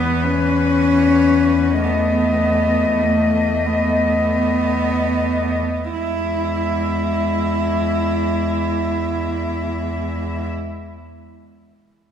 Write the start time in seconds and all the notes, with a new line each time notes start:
Already playing: E2 E3 B3 B4
0.24 C#4
1.81 A3 B3 D#5
3.02 A3
3.66 B3
5.90 E2 G#3 E4 E5